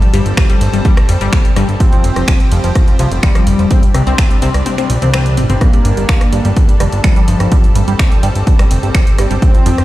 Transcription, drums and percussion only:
0.02 closed hi-hat
0.14 open hi-hat
0.26 closed hi-hat
0.37 finger snap, kick, cross-stick, closed hi-hat
0.50 closed hi-hat
0.61 open hi-hat
0.73 closed hi-hat
0.85 kick, closed hi-hat
0.97 finger snap, cross-stick, closed hi-hat
1.09 open hi-hat
1.21 closed hi-hat
1.33 finger snap, kick, closed hi-hat
1.45 closed hi-hat
1.56 cross-stick, open hi-hat
1.69 closed hi-hat
1.80 kick, closed hi-hat
1.93 closed hi-hat
2.04 open hi-hat
2.16 cross-stick, closed hi-hat
2.28 finger snap, kick, closed hi-hat
2.40 closed hi-hat
2.52 open hi-hat
2.64 closed hi-hat
2.75 kick, cross-stick, closed hi-hat
2.88 closed hi-hat
2.99 open hi-hat
3.12 closed hi-hat
3.23 finger snap, kick, closed hi-hat
3.35 cross-stick, closed hi-hat
3.47 open hi-hat
3.59 closed hi-hat
3.71 kick, closed hi-hat
3.83 closed hi-hat
3.94 cross-stick, open hi-hat
4.07 closed hi-hat
4.18 finger snap, kick, closed hi-hat
4.31 closed hi-hat
4.42 open hi-hat
4.54 cross-stick, open hi-hat
4.66 closed hi-hat, high tom
4.78 finger snap, closed hi-hat, high tom
4.90 open hi-hat
5.02 closed hi-hat, mid tom
5.14 finger snap, cross-stick, closed hi-hat, mid tom
5.26 closed hi-hat, mid tom
5.37 mid tom, open hi-hat
5.50 closed hi-hat, mid tom
5.61 kick, cross-stick, closed hi-hat
5.73 closed hi-hat
5.85 open hi-hat
5.97 closed hi-hat
6.09 finger snap, kick, closed hi-hat
6.21 cross-stick, closed hi-hat
6.33 open hi-hat
6.45 closed hi-hat
6.56 kick, closed hi-hat
6.69 closed hi-hat
6.80 cross-stick, open hi-hat
6.92 closed hi-hat
7.04 finger snap, kick, closed hi-hat
7.16 closed hi-hat
7.28 open hi-hat
7.40 cross-stick, closed hi-hat
7.52 kick, closed hi-hat
7.64 closed hi-hat
7.75 open hi-hat
7.88 closed hi-hat
7.99 finger snap, kick, cross-stick, closed hi-hat
8.12 closed hi-hat
8.23 open hi-hat
8.35 closed hi-hat
8.47 kick, closed hi-hat
8.59 finger snap, cross-stick, closed hi-hat
8.71 open hi-hat
8.83 closed hi-hat
8.95 finger snap, kick, closed hi-hat
9.07 closed hi-hat
9.18 cross-stick, open hi-hat
9.31 closed hi-hat
9.42 kick, closed hi-hat
9.54 closed hi-hat
9.66 open hi-hat
9.78 cross-stick, closed hi-hat

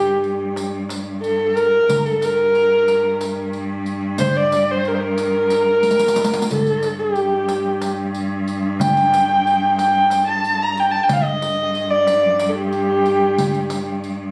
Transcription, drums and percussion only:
0.24 riq
0.56 riq, darbuka tek
0.89 riq, darbuka tek
1.23 riq, darbuka ka
1.57 riq
1.89 riq, darbuka dum
2.06 riq
2.22 riq, darbuka tek
2.55 riq
2.88 riq, darbuka tek
3.21 riq, darbuka tek
3.53 riq
3.86 riq
4.18 riq, darbuka dum
4.35 riq
4.52 riq, darbuka tek
4.85 riq
5.18 riq, darbuka tek
5.50 riq, darbuka tek
5.83 riq
5.91 riq
5.99 riq
6.08 riq
6.16 riq
6.24 riq
6.33 riq
6.42 riq
6.51 riq, darbuka dum
6.67 riq
6.83 riq, darbuka tek
7.16 riq
7.49 riq, darbuka tek
7.82 riq, darbuka tek
8.15 riq
8.47 riq, darbuka ka
8.80 riq, darbuka dum
8.97 riq
9.12 riq, darbuka tek
9.47 riq
9.78 riq, darbuka tek
10.10 riq, darbuka tek
10.44 riq, darbuka ka
10.77 riq, darbuka ka
11.09 riq, darbuka dum
11.42 riq, darbuka tek
11.75 riq
12.07 riq, darbuka tek
12.40 riq, darbuka tek
12.73 riq
13.06 riq
13.38 riq, darbuka dum
13.54 riq, darbuka ka
13.70 riq, darbuka tek
14.04 riq

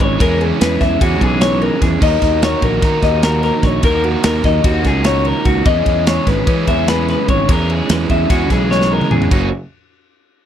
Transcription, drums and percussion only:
0.00 kick, ride
0.20 kick, ride
0.41 ride
0.61 snare, ride
0.81 kick, snare, ride
1.01 kick, ride
1.21 kick, ride
1.41 snare, ride
1.62 ride
1.82 kick, snare, ride
2.02 kick, crash
2.22 kick, snare, ride
2.42 snare, ride
2.62 kick, ride
2.82 kick, snare, ride
3.02 kick, snare, ride
3.23 snare, ride
3.43 snare, ride
3.63 kick, snare, ride
3.83 kick, ride
4.04 ride
4.23 snare, ride
4.44 kick, snare, ride
4.64 kick, ride
4.85 kick, snare, ride
5.04 snare, ride
5.25 ride
5.45 kick, ride
5.65 kick, ride
5.86 kick, ride
6.07 snare, ride
6.27 kick, snare, ride
6.47 kick, ride
6.67 kick, ride
6.88 snare, ride
7.08 snare, ride
7.28 kick, ride
7.49 kick, ride
7.70 ride
7.89 snare, ride
8.09 kick, ride
8.30 kick, snare, ride
8.50 kick, snare, ride
8.71 snare
8.81 snare
9.01 mid tom
9.11 mid tom
9.22 floor tom
9.31 kick, crash

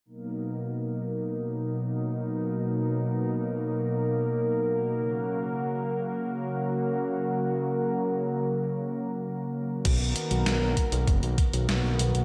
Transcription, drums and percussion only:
9.85 kick, closed hi-hat, crash
10.16 closed hi-hat
10.31 closed hi-hat
10.46 snare, closed hi-hat
10.77 kick, closed hi-hat
10.92 closed hi-hat
11.07 kick, closed hi-hat
11.23 closed hi-hat
11.38 kick, closed hi-hat
11.53 closed hi-hat
11.69 snare, closed hi-hat
11.99 closed hi-hat
12.15 closed hi-hat

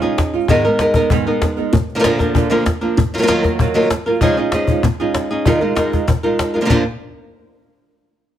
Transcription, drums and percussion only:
0.18 cajon bass, cajon slap
0.33 cajon slap
0.48 cajon bass
0.79 cajon slap
0.94 cajon bass
1.10 cajon bass
1.42 cajon bass, cajon slap
1.58 cajon slap
1.73 cajon bass
1.89 cajon slap
2.04 cajon slap
2.20 cajon bass, cajon slap
2.35 cajon bass
2.66 cajon bass, cajon slap
2.98 cajon bass
3.13 cajon slap
3.29 cajon slap
3.44 cajon bass, cajon slap
3.59 cajon bass
3.91 cajon slap
4.21 cajon bass
4.37 cajon slap
4.52 cajon slap
4.68 cajon bass
4.83 cajon bass
5.14 cajon slap
5.46 cajon bass
5.76 cajon slap
5.93 cajon bass, cajon slap
6.08 cajon bass
6.39 cajon slap
6.70 cajon bass

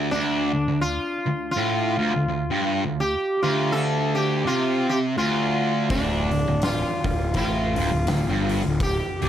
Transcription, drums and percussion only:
5.90 kick, open hi-hat
6.31 open hi-hat
6.62 snare, open hi-hat
7.04 kick, open hi-hat
7.34 kick, open hi-hat
7.76 open hi-hat
8.07 snare, open hi-hat
8.49 open hi-hat
8.80 kick, open hi-hat
9.22 open hi-hat

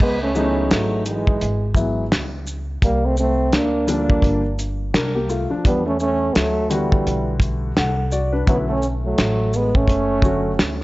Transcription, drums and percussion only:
0.00 kick, crash
0.35 shaker
0.71 snare, closed hi-hat
1.06 closed hi-hat, shaker
1.27 kick
1.41 closed hi-hat
1.75 kick, shaker
2.12 snare, closed hi-hat
2.47 shaker
2.82 kick, closed hi-hat
3.17 shaker
3.53 snare, closed hi-hat
3.88 closed hi-hat, shaker
4.10 kick
4.22 kick, closed hi-hat
4.59 closed hi-hat, shaker
4.94 snare, closed hi-hat
5.29 shaker
5.65 kick, closed hi-hat
6.00 shaker
6.35 snare, closed hi-hat
6.71 closed hi-hat, shaker
6.92 kick
7.07 closed hi-hat
7.40 kick, closed hi-hat, shaker
7.77 snare, closed hi-hat
8.12 shaker
8.47 kick, closed hi-hat
8.82 shaker
9.18 snare, closed hi-hat
9.53 shaker
9.75 kick
9.87 kick, closed hi-hat
10.22 kick, shaker
10.59 snare, closed hi-hat

